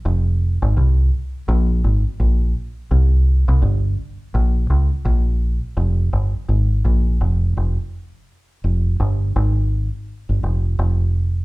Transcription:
X:1
M:4/4
L:1/16
Q:"Swing 16ths" 1/4=84
K:Fm
V:1 name="Fingered electric bass" clef=bass
F,,,3 A,,, C,,2 z2 B,,,2 A,,, z B,,,2 z2 | C,,3 C,, G,,,2 z2 B,,,2 D,, z B,,,3 z | F,,,2 G,,, z A,,,2 B,,,2 F,,,2 F,,, z4 z | F,,,2 G,,,2 A,,,3 z2 G,,, F,,,2 F,,,4 |]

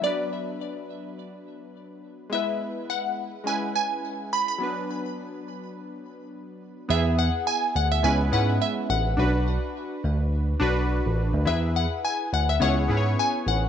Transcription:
X:1
M:4/4
L:1/16
Q:"Swing 16ths" 1/4=105
K:Bdor
V:1 name="Synth pluck"
d12 z4 | e4 f4 g2 g4 b b- | b6- b z8 z | e2 f2 g2 f e g2 f2 e2 f2- |
f8- f2 z6 | e2 f2 g2 f e f4 g2 f2 |]
V:2 name="Synth keys"
[F,B,DB]16 | [G,B,EB]8 [G,CEB]8 | [F,B,DB]16 | [B,EG]6 z2 [G,B,CEB]2 [G,B,CEB]4 z2 |
[DFB]6 z4 [DFB]4 z2 | [EGB]6 z2 [B,CEGc]2 [B,CEGBc]4 z2 |]
V:3 name="Tine electric piano" clef=bass
z16 | z16 | z16 | E,,3 z3 D,,2 C,,2 G,,2 z2 A,,,2 |
B,,,3 z3 D,,4 B,,,3 A,,,2 D,, | E,,3 z3 D,,2 C,,2 G,,2 z2 A,,,2 |]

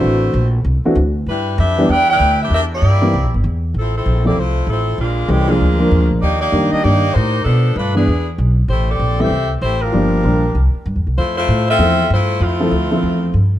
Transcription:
X:1
M:4/4
L:1/8
Q:"Swing" 1/4=194
K:Cmix
V:1 name="Saxophone section"
[A,E^Fc]3 z4 z | [G,DE=B]2 [DGBe]2 [EBdg] [EBdg]2 [DGBe] | [DGBe] [B,EGd]4 z3 | [K:F] [F,CEA] [F,CEA]2 [B,EGd] [A,EFc]2 [F,CEA]2 |
[_A,B,DF]2 [E,A,CG] [A,B,DF]4 z | [B,_EGd] [B,EGd]2 [B,DG_e] [B,EGd]2 [EGBc]2 | [F,=B,DA]2 [A,DF=B] [E,B,D_A]2 z3 | [A,EGc] [CGAd]2 [CGAe]2 z [A,EGc] [G,DFB]- |
[G,DFB]4- [G,DFB] z3 | [A,EFc] [A,EFc]2 [CFAe]3 [A,EFc]2 | [A,CEF]6 z2 |]
V:2 name="Grand piano"
[E,A,CD^F]2 z3 [E,A,CDF] z2 | z3 [E,G,=B,DG] z4 | z3 [E,G,B,CG] z4 | [K:F] z3 [F,A,CEA] z4 |
z2 [E,G,A,_DG] [F,_A,B,=D_A]2 [F,A,B,DB]3 | z2 [_E,G,B,DG]2 [E,G,B,DG] z3 | z3 [E,_A,=B,D_A] z4 | z3 [E,G,A,CG] z4 |
[F,G,B,DG]2 [F,G,B,DB] z4 z | z4 [F,A,CEA] z3 | z [F,A,CEA] z [F,A,CAe]3 z2 |]
V:3 name="Upright bass" clef=bass
A,,,2 B,,,2 C,, z D,,2 | G,,2 F,,2 E,,2 D,,2 | E,,2 G,,2 (3C,, B,,, G,,, E,,2 | [K:F] A,,,2 B,,,2 C,,2 A,,,2 |
B,,,2 C,,2 D,,2 (3E,, D,, B,,, | _E,,2 F,, z G,,2 A,,2 | =B,,2 G,,2 E,,2 =B,,,2 | A,,,2 B,,,2 C,,2 A,,,2 |
G,,,2 B,,,2 C,, z (3G,, E,, C,, | F,,2 A,,2 E,,2 G,,2 | F,,2 D,,2 E,,2 G,,2 |]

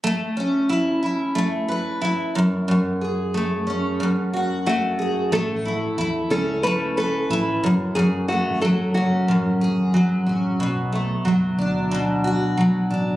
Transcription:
X:1
M:4/4
L:1/16
Q:"Swing 16ths" 1/4=91
K:A
V:1 name="Nylon-string guitar"
z16 | z12 F4 | A6 A2 B2 A6 | G2 F2 A2 F8 z2 |
z16 |]
V:2 name="Steel-string acoustic guitar"
A,2 C2 E2 E2 A,2 B2 E2 F,,2 | F,,2 G2 A,2 C2 F,,2 F2 A,2 G2 | A,2 E2 E2 C2 A,2 B2 E2 F,,2 | F,,2 A,2 F,2 C2 F,,2 G2 F,2 C2 |
B,,2 A,2 F,2 D2 B,,2 F2 F,2 D2 |]
V:3 name="Fingered electric bass" clef=bass
z16 | z16 | A,,,4 E,,2 C,,6 A,,,2 F,,,2 | F,,,3 G,,,2 z F,,,2 A,,,2 G,,,4 A,,,2 |
B,,,4 F,,,2 D,,6 B,,,2 A,,,2 |]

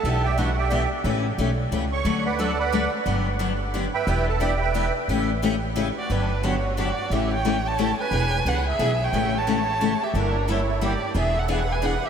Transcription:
X:1
M:3/4
L:1/16
Q:"Swing" 1/4=178
K:Glyd
V:1 name="Violin"
z12 | z12 | z12 | z12 |
z12 | z8 z2 d2 | B4 c4 d4 | e2 g4 a4 ^g2- |
^g4 f2 e4 =g2- | g2 a8 e2 | _B4 c4 d4 | e2 f2 f2 ^g2 f2 e2 |]
V:2 name="Accordion"
[Aa]2 [Gdeg]2 [Ff]2 [Gdeg]4 z2 | z8 z2 [cc']2- | [cc']2 [Bdfb]2 [Adfa]2 [Bdfb]4 z2 | z8 z2 [Begb]2- |
[Begb]2 [Aa]2 [Gdeg]2 [Begb]4 z2 | z8 z2 F2 | D4 F4 F4 | G2 c4 c4 B2- |
B4 B2 ^G4 c2- | c2 c8 G2 | D4 E4 G4 | ^G2 A2 B2 B2 B2 =G2 |]
V:3 name="Steel-string acoustic guitar"
[B,,E,B,DG]2 z2 [B,,E,B,DG] z3 [B,,E,B,DG] z3 | [C,E,A,CG]2 z2 [C,E,A,CG] z3 [C,E,A,CG] z3 | [D,F,A,DFB]2 z2 [D,F,A,DFB] z3 [D,F,A,DFB] z3 | [D,F,B,DG]2 z2 [D,F,B,DG] z3 [D,F,B,DG] z3 |
[E,B,DG]2 z2 [E,B,DG] z3 [E,B,DG] z3 | [C,E,A,CG]2 z2 [C,E,A,CG] z3 [C,E,A,CG] z3 | [D,F,B,DG]2 z2 [D,F,B,DG] z3 [D,F,B,DG] z3 | [C,E,A,CG]2 z2 [C,E,A,CG] z3 [C,E,A,CG] z3 |
[E,B,D^G]2 z2 [E,B,DG] z3 [E,B,DG] z3 | [C,E,A,CG]2 z2 [C,E,A,CG] z3 [C,E,A,CG] z3 | [D,G,_B,EG]2 z2 [D,G,B,EG] z3 [D,G,B,EG] z3 | [E,B,D^G]2 z2 [E,B,DG] z3 [E,B,DG] z3 |]
V:4 name="Upright bass" clef=bass
B,,,12 | A,,,4 B,,,4 C,,4 | D,,12 | G,,,12 |
E,,,12 | A,,,12 | G,,,12 | A,,,12 |
E,,,4 C,,4 B,,,4 | A,,,12 | G,,,12 | E,,,12 |]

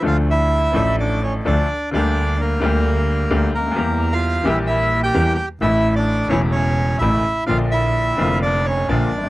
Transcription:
X:1
M:4/4
L:1/16
Q:1/4=129
K:Dm
V:1 name="Bandoneon"
[Ff]2 [Ee]6 [Dd]2 [^C^c]2 [Dd]4 | [Dd]4 [B,B]8- [B,B]2 [B,B]2- | [B,B]3 [Ff]3 [Ee]2 [Ee]3 [Gg]3 [Gg]2 | [Ee]3 [Dd]3 [^C^c]2 [Cc]4 [Ee]4 |
[Ff]2 [Ee]6 [Dd]2 [^C^c]2 [Dd]4 |]
V:2 name="Upright piano" clef=bass
[D,,D,F,A,DA]6 [A,,,A,,F,A,DA]6 [D,,D,F,A,DA]2 z2 | [D,,D,G,B,G]6 [D,,D,G,B,G]6 [D,,D,G,B,G]2 z/2 ^C,,/2 D,,/2 _E,,/2 | [E,,G,B,G]6 [B,,,B,,E,G,B,G]6 [E,,E,G,B,G]2 z2 | [A,,,A,,E,A,E]6 [E,,,E,,^C,E,A,E]6 [A,,,A,,C,E,A,E]2 z2 |
[B,,,B,,D,F,B,D]6 [F,,,F,,D,F,B,F]6 [B,,,B,,D,F,B,F]2 z/2 G,,,/2 ^G,,,/2 z/2 |]
V:3 name="Double bass" clef=bass
D,,6 A,,,6 D,,2 z2 | D,,6 D,,6 D,,2 D,,2 | E,,6 B,,,6 E,,2 z2 | A,,,6 E,,,6 A,,,2 z2 |
B,,,6 F,,,6 B,,,2 ^G,,,2 |]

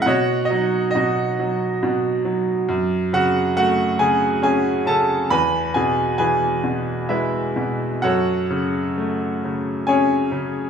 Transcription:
X:1
M:3/4
L:1/8
Q:1/4=68
K:F#dor
V:1 name="Grand piano"
[Fcdf] [Dd] [DFd]2 z2 | z [Ff] [Ff] [Gg] [Gg] [Aa] | [Bgb] [Gg] [GBg]2 [EBe]2 | [FAcf]4 [Gcg]2 |]
V:2 name="Grand piano" clef=bass
B,, F, B,, F, B,, F, | F,, C, A, C, C C, | E,, B,, E, B,, G, B,, | F,, C, A, C, C C, |]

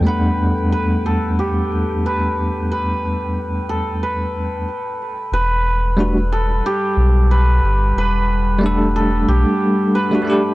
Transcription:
X:1
M:4/4
L:1/16
Q:"Swing 16ths" 1/4=91
K:Em
V:1 name="Synth texture"
g16- | g12 z4 | z16 | z16 |]
V:2 name="Hammered dulcimer"
B4 B2 A2 G4 B3 z | B6 A2 B6 z2 | B6 A2 G4 B3 z | B6 A2 G4 B3 z |]
V:3 name="Ambient pad"
[A,A]16- | [A,A]12 z4 | [G,f]16- | [G,f]16 |]
V:4 name="Tine electric piano"
[E,,G,A,B,Df]16- | [E,,G,A,B,Df]12 z4 | z4 [G,A,DF] z8 z3 | z4 [G,A,DA]8- [G,A,DA] [G,A,DF] [G,A,DG]2 |]
V:5 name="Sub bass" clef=bass
z16 | z16 | E,,,8 z2 B,,,4 G,,,2 | E,,,8 B,,,2 z6 |]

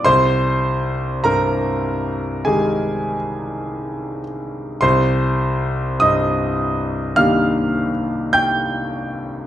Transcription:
X:1
M:4/4
L:1/8
Q:1/4=51
K:Cm
V:1 name="Grand piano"
[cc']2 [Bb]2 [Aa]3 z | [cc']2 [ee']2 [ff']2 [gg']2 |]
V:2 name="Grand piano" clef=bass
C,,2 G,,2 [E,A,EG]4 | C,,2 G,,2 [E,B,DG]4 |]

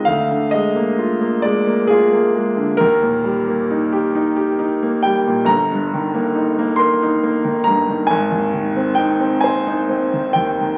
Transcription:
X:1
M:12/8
L:1/16
Q:3/8=44
K:Eb
V:1 name="Grand piano"
f2 e4 d2 A4 B8- B2 g2 | b6 c'4 b2 a4 g2 a4 g2 |]
V:2 name="Grand piano"
D,, D, A, B, F B, A, B, F B, A, D, E,, B,, G, B, E G E G E B, G, B,, | G,,, G,, E, B, E B, B E B, E, G,, E, A,,, E,, E, C E C c E C E, E,, E, |]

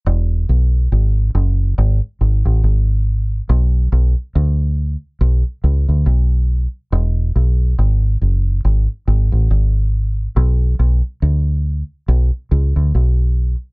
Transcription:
X:1
M:4/4
L:1/16
Q:"Swing 16ths" 1/4=70
K:Bdor
V:1 name="Fingered electric bass" clef=bass
E,,,2 B,,,2 G,,,2 F,,,2 G,,, z G,,, A,,, G,,,4 | B,,,2 B,,, z D,,3 z B,,, z C,, D,, B,,,3 z | E,,,2 B,,,2 G,,,2 F,,,2 G,,, z G,,, A,,, G,,,4 | B,,,2 B,,, z D,,3 z B,,, z C,, D,, B,,,3 z |]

